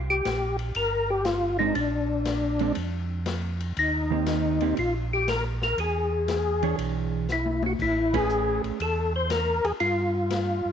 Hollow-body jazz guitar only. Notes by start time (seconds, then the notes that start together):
1.60 G#3 C4 D4
2.61 G#3 C4 D4
4.11 D#3 A#3 C4 G4
4.62 D#3 A#3 C4 G4
6.63 E3 D4 G#4 C#5
8.14 A3 C#4 G#4 B4